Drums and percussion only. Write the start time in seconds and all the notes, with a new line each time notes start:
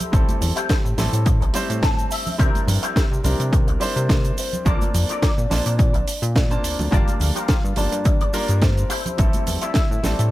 0.00 closed hi-hat, low conga, cabasa
0.13 kick, closed hi-hat, cabasa
0.29 closed hi-hat, high conga, cabasa
0.41 open hi-hat, low conga, cabasa
0.56 closed hi-hat, cabasa
0.69 kick, snare, closed hi-hat, cabasa
0.86 cabasa
0.98 snare, open hi-hat, low conga, cabasa
1.13 closed hi-hat, cabasa
1.25 kick, closed hi-hat, cabasa
1.41 closed hi-hat, cabasa
1.54 open hi-hat, cabasa
1.70 closed hi-hat, cabasa
1.71 cabasa
1.82 kick, snare, closed hi-hat, high conga, cabasa
1.84 cabasa
1.99 closed hi-hat, cabasa
2.11 open hi-hat, cabasa
2.27 open hi-hat, low conga, cabasa
2.39 kick, closed hi-hat, cabasa
2.55 closed hi-hat, high conga, cabasa
2.68 open hi-hat, low conga, cabasa
2.83 closed hi-hat, cabasa
2.96 kick, snare, closed hi-hat, cabasa
3.13 cabasa
3.24 open hi-hat, high conga, low conga, cabasa
3.39 closed hi-hat, cabasa
3.41 cabasa
3.53 kick, closed hi-hat, cabasa
3.67 closed hi-hat, cabasa
3.81 open hi-hat, cabasa
3.82 cabasa
3.97 closed hi-hat, cabasa
4.09 kick, snare, closed hi-hat, high conga, cabasa
4.11 cabasa
4.24 closed hi-hat, cabasa
4.38 open hi-hat, cabasa
4.53 closed hi-hat, low conga, cabasa
4.66 kick, closed hi-hat, cabasa
4.81 closed hi-hat, high conga, cabasa
4.94 open hi-hat, low conga, cabasa
5.09 closed hi-hat, cabasa
5.11 cabasa
5.22 kick, snare, closed hi-hat, cabasa
5.38 cabasa
5.51 snare, open hi-hat, low conga, cabasa
5.66 closed hi-hat, cabasa
5.78 kick, closed hi-hat, cabasa
5.94 closed hi-hat, cabasa
6.07 open hi-hat, cabasa
6.23 closed hi-hat, cabasa
6.35 kick, snare, closed hi-hat, high conga, cabasa
6.37 cabasa
6.51 closed hi-hat, cabasa
6.64 open hi-hat, cabasa
6.79 open hi-hat, low conga, cabasa
6.92 kick, closed hi-hat, cabasa
7.07 closed hi-hat, high conga, cabasa
7.20 open hi-hat, low conga, cabasa
7.22 cabasa
7.35 closed hi-hat, cabasa
7.48 kick, snare, closed hi-hat, cabasa
7.50 cabasa
7.65 cabasa
7.76 open hi-hat, high conga, low conga, cabasa
7.92 closed hi-hat, cabasa
8.04 kick, closed hi-hat, cabasa
8.21 closed hi-hat, cabasa
8.34 open hi-hat, cabasa
8.48 closed hi-hat, cabasa
8.62 kick, snare, closed hi-hat, high conga, cabasa
8.77 closed hi-hat, cabasa
8.90 open hi-hat, cabasa
9.06 closed hi-hat, low conga, cabasa
9.18 kick, closed hi-hat, cabasa
9.33 closed hi-hat, high conga, cabasa
9.47 open hi-hat, low conga, cabasa
9.61 closed hi-hat, cabasa
9.74 kick, snare, closed hi-hat, cabasa
9.92 cabasa
10.03 snare, open hi-hat, low conga, cabasa
10.18 closed hi-hat, cabasa